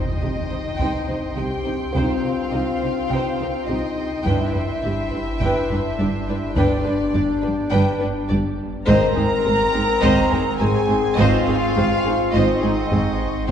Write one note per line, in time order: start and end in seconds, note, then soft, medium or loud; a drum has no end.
0.00 4.22 C2 medium
0.00 4.22 G2 soft
0.00 4.21 C4 medium
0.00 1.37 D#4 medium
0.00 1.37 D#5 medium
0.00 8.26 G5 soft
0.00 7.10 C6 soft
0.00 impact medium
0.22 0.30 C2 soft
0.22 0.30 C3 soft
0.22 0.57 C3 soft
0.22 0.31 D#4 soft
0.22 0.30 G4 soft
0.22 0.30 D#5 soft
0.50 0.59 C3 soft
0.50 0.59 D#4 soft
0.50 0.58 C5 soft
0.78 0.88 C2 medium
0.78 0.88 C3 medium
0.78 1.15 C4 soft
0.78 1.07 D#4 medium
0.78 1.07 C5 medium
0.78 1.06 G5 medium
0.78 taiko medium
1.08 1.17 C3 soft
1.08 1.18 D#4 soft
1.08 1.16 C5 soft
1.36 1.46 C2 soft
1.36 1.45 C3 soft
1.36 1.73 C3 medium
1.36 1.45 D#4 soft
1.36 1.95 G4 medium
1.36 1.45 G4 soft
1.36 1.44 D#5 soft
1.36 1.96 G5 medium
1.64 1.73 C3 soft
1.64 1.74 D#4 soft
1.64 1.72 C5 soft
1.93 2.03 C2 medium
1.93 2.29 C3 soft
1.93 2.03 C3 medium
1.93 5.36 C4 soft
1.93 2.22 D#4 medium
1.93 3.67 F4 medium
1.93 5.36 C5 soft
1.93 2.23 C5 soft
1.93 3.69 F5 medium
1.93 2.21 G5 soft
1.93 taiko medium
2.22 2.32 C3 soft
2.22 2.33 D#4 soft
2.22 2.30 C5 soft
2.51 2.61 C2 soft
2.51 2.87 C3 soft
2.51 2.61 C3 soft
2.51 2.61 D#4 soft
2.51 2.61 G4 soft
2.51 2.59 D#5 soft
2.80 2.90 C3 soft
2.80 2.91 D#4 soft
2.80 2.88 C5 soft
3.08 3.18 C2 medium
3.08 3.18 C3 medium
3.08 3.45 C3 medium
3.08 3.38 D#4 medium
3.08 3.38 C5 medium
3.08 3.36 G5 soft
3.37 3.47 C3 soft
3.37 3.49 D#4 medium
3.37 3.45 C5 medium
3.66 3.77 C2 soft
3.66 3.75 C3 soft
3.66 4.03 C4 soft
3.66 4.24 D#4 medium
3.66 3.77 D#4 soft
3.66 3.76 G4 soft
3.66 3.74 D#5 soft
3.66 4.27 D#5 medium
4.24 8.87 G1 medium
4.24 4.34 G1 medium
4.24 4.34 G2 medium
4.24 4.61 G2 medium
4.24 8.71 G2 medium
4.24 8.71 D4 medium
4.24 4.54 D4 medium
4.24 6.56 E4 medium
4.24 4.53 B4 medium
4.24 6.57 E5 medium
4.24 4.52 G5 medium
4.24 taiko medium
4.53 4.63 G2 soft
4.53 4.64 D4 soft
4.53 4.61 B4 soft
4.53 taiko low soft
4.82 4.91 G1 soft
4.82 5.18 G2 medium
4.82 4.92 G2 soft
4.82 4.92 D4 soft
4.82 4.93 G4 soft
4.82 4.90 D5 soft
5.10 5.21 G2 soft
5.10 5.21 D4 soft
5.10 5.18 B4 soft
5.40 5.49 G1 medium
5.40 5.50 G2 medium
5.40 5.76 G3 medium
5.40 5.69 D4 medium
5.40 5.69 B4 medium
5.40 5.68 G5 medium
5.40 taiko medium
5.70 5.79 G2 soft
5.70 5.79 D4 medium
5.70 5.78 B4 soft
5.70 taiko low soft
5.98 6.08 G1 medium
5.98 6.34 G2 medium
5.98 6.08 G2 medium
5.98 6.08 D4 medium
5.98 6.08 G4 soft
5.98 6.06 D5 soft
6.28 6.36 G2 soft
6.28 6.37 D4 medium
6.28 6.37 B4 medium
6.55 6.64 G1 medium
6.55 6.91 G2 medium
6.55 6.66 G2 medium
6.55 7.72 D4 medium
6.55 6.84 D4 medium
6.55 6.84 B4 medium
6.55 7.71 D5 medium
6.55 6.84 G5 medium
6.55 taiko medium
6.85 6.96 G2 soft
6.85 6.94 D4 medium
6.85 6.93 B4 medium
7.13 7.22 G1 medium
7.13 7.48 G2 medium
7.13 7.24 G2 medium
7.13 7.23 D4 medium
7.13 7.22 G4 medium
7.13 7.22 D5 medium
7.13 taiko low soft
7.41 7.51 D4 medium
7.41 7.49 B4 medium
7.46 7.54 G2 medium
7.70 7.81 G1 medium
7.70 8.06 G2 medium
7.70 7.98 D4 medium
7.70 7.98 B4 medium
7.70 7.98 G5 medium
7.74 7.82 G2 medium
7.99 8.11 G2 medium
7.99 8.09 D4 medium
7.99 8.07 B4 medium
8.28 8.39 G1 medium
8.28 8.40 G2 medium
8.28 8.65 G3 medium
8.28 8.38 D4 medium
8.28 8.38 G4 medium
8.28 8.36 D5 medium
8.28 taiko low medium
8.86 13.50 G#1 medium
8.86 8.97 G#1 loud
8.86 9.22 G#2 loud
8.86 12.30 G#2 medium
8.86 8.97 G#2 medium
8.86 9.14 C4 medium
8.86 12.30 C4 medium
8.86 10.57 A#4 loud
8.86 9.14 C5 medium
8.86 9.14 D#5 medium
8.86 10.56 A#5 loud
8.86 13.51 C6 medium
8.86 taiko loud
9.15 9.26 G#2 medium
9.15 9.24 C4 medium
9.15 9.24 D#4 medium
9.15 9.23 G#4 medium
9.15 taiko low soft
9.44 9.55 G#1 medium
9.44 9.79 G#2 medium
9.44 9.55 G#2 medium
9.44 9.53 C4 soft
9.44 9.53 G#4 medium
9.44 9.52 C5 medium
9.72 9.83 G#2 medium
9.72 9.82 C4 medium
9.72 9.82 D#4 medium
9.72 9.80 G#4 medium
10.01 10.12 G#1 medium
10.01 10.11 G#2 medium
10.01 10.38 G#3 medium
10.01 10.29 C4 medium
10.01 10.29 C5 medium
10.01 10.29 D#5 medium
10.01 13.51 C#6 medium
10.01 taiko medium
10.31 10.40 G#2 medium
10.31 10.41 C4 medium
10.31 10.40 D#4 medium
10.31 10.39 G#4 medium
10.31 taiko low soft
10.60 10.70 G#1 medium
10.60 10.95 G#2 medium
10.60 10.69 G#2 medium
10.60 10.68 C4 medium
10.60 10.68 G#4 medium
10.60 11.19 G#4 loud
10.60 10.68 C5 medium
10.60 11.18 G#5 medium
10.89 10.97 G#2 medium
10.89 10.97 C4 medium
10.89 10.98 D#4 medium
10.89 10.97 G#4 medium
11.17 11.27 G#1 loud
11.17 11.26 G#2 medium
11.17 11.54 G#2 medium
11.17 11.45 C4 medium
11.17 12.35 F4 loud
11.17 11.46 C5 medium
11.17 11.44 D#5 medium
11.17 12.34 F5 loud
11.17 taiko medium
11.47 11.55 G#2 medium
11.47 11.55 C4 medium
11.47 11.55 D#4 medium
11.47 11.56 G#4 medium
11.76 11.86 G#1 medium
11.76 11.84 G#2 medium
11.76 12.12 G#2 medium
11.76 11.85 C4 medium
11.76 11.85 G#4 medium
11.76 11.85 C5 medium
11.76 taiko low soft
12.05 12.13 G#2 medium
12.05 12.14 C4 medium
12.05 12.14 D#4 medium
12.05 12.13 G#4 medium
12.33 12.43 G#1 medium
12.33 12.41 G#2 medium
12.33 12.69 G#2 medium
12.33 13.47 G#2 medium
12.33 13.47 C4 medium
12.33 12.61 C4 medium
12.33 13.49 D#4 medium
12.33 12.61 C5 medium
12.33 12.60 D#5 medium
12.33 13.50 D#5 medium
12.62 12.71 G#2 medium
12.62 12.72 C4 medium
12.62 12.72 D#4 medium
12.62 12.70 G#4 medium
12.90 13.01 G#1 medium
12.90 13.01 G#2 medium
12.90 13.27 G#3 medium
12.90 13.00 C4 medium
12.90 13.00 G#4 medium
12.90 12.98 C5 medium
12.90 taiko low medium
13.48 13.51 C#5 medium
13.48 13.51 G5 medium